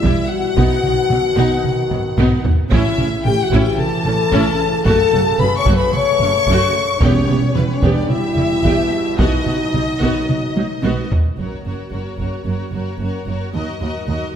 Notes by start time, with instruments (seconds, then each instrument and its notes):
Already playing: trombone section B2 G3, french horn section E4, violin section E5
0.03 double bass section E1, cello section E2, viola section G3 E4, taiko
0.30 french horn section F#4, violin section F#5
0.57 double bass section B1, cello section B2, trombone section D#3, viola section B3 D#4, taiko
0.83 double bass section B1, cello section B2, viola section B3 D#4, taiko mid
1.10 double bass section B1, cello section B2, viola section F#3 B3, taiko mid
1.37 double bass section B1, cello section B2, viola section B3 D#4, taiko
1.64 taiko mid
1.91 double bass section B1, cello section B2, viola section F#3 B3, taiko low-mid
2.18 double bass section B1, cello section B2, viola section B3 D#4, taiko low-mid
2.45 taiko low
2.71 double bass section A1, timpani A2, cello section A2, trombone section C#3 E3, viola section C#4 E4, french horn section E4, violin section E5, taiko
2.98 double bass section A1, cello section A2, viola section C#4 E4, taiko mid
3.25 double bass section A1, cello section A2, viola section A3 C#4, french horn section G4, violin section G5, taiko mid
3.43 french horn section F#4, violin section F#5
3.51 double bass section A1, cello section A2, viola section C#4 E4, taiko
3.60 french horn section G4, violin section G5
3.78 french horn section A4, violin section A5, taiko mid
4.05 double bass section A1, cello section A2, viola section A3 C#4, taiko mid
4.32 double bass section A1, cello section A2, viola section C#4 E4, taiko
4.84 double bass section F#1, cello section F#2, trombone section A3, viola section A3 F#4, french horn section A4, violin section A5, taiko
5.12 double bass section F#1, cello section F#2, viola section A3 F#4, taiko mid
5.38 double bass section F#1, cello section F#2, viola section F#3 C#4, french horn section B4, violin section B5, taiko mid
5.58 french horn section C#5, violin section C#6
5.66 double bass section F#1, cello section F#2, viola section A3 F#4, taiko
5.74 french horn section B4, violin section B5
5.78 violin section B5
5.92 french horn section C#5, violin section C#6, taiko mid
6.20 double bass section F#1, cello section F#2, viola section F#3 C#4, taiko mid
6.47 double bass section F#1, cello section F#2, viola section A3 F#4, taiko
6.99 double bass section E1, timpani E2, trombone section B2 G3, viola section B3 G4, french horn section C#4, violin section C#5, taiko
7.03 cello section E2
7.29 double bass section E1, cello section E2, viola section B3 G4, taiko mid
7.54 double bass section E1, cello section E2, viola section G3 E4, french horn section B3, violin section B4, taiko mid
7.73 french horn section C#4, violin section C#5
7.83 double bass section E1, cello section E2, viola section B3 G4, taiko
7.92 french horn section D4, violin section D5
8.09 french horn section E4, violin section E5, taiko mid
8.37 double bass section E1, cello section E2, viola section G3 E4, taiko mid
8.64 double bass section E1, cello section E2, viola section B3 G4, taiko
9.18 double bass section B1, cello section B2, trombone section F#3, viola section B3 F#4, french horn section D#4, violin section D#5, taiko
9.46 double bass section B1, cello section B2, viola section B3 F#4, taiko mid
9.74 double bass section B1, cello section B2, viola section F#3 D#4, taiko mid
10.01 double bass section B1, cello section B2, viola section B3 F#4, taiko
10.29 taiko mid
10.56 double bass section B1, cello section B2, viola section F#3 D#4, taiko high
10.83 double bass section B1, cello section B2, viola section B3 F#4, taiko high
11.12 taiko low
11.37 double bass section F#1, cello section F#2, french horn section C#3 A#3, viola section F#4, violin section A#4 C#5, taiko
11.65 double bass section F#1, cello section F#2, viola section F#4, violin section A#4 C#5
11.92 double bass section F#1, cello section F#2, viola section F#4, violin section A#4 C#5
12.18 double bass section F#1, cello section F#2, viola section F#4, violin section A#4 C#5, taiko
12.45 double bass section F#1, cello section F#2, viola section F#4, violin section A#4 C#5
12.72 double bass section F#1, cello section F#2, viola section F#4, violin section A#4 C#5
12.99 double bass section F#1, cello section F#2, viola section F#4, violin section A#4 C#5
13.27 double bass section F#1, cello section F#2, viola section F#4, violin section A#4 C#5
13.53 cello section D#2, double bass section D#2, french horn section F#3 D#4, viola section F#4, violin section A#4 D#5
13.81 cello section D#2, double bass section D#2, viola section F#4, violin section A#4 D#5
14.08 cello section D#2, double bass section D#2, viola section F#4, violin section A#4 D#5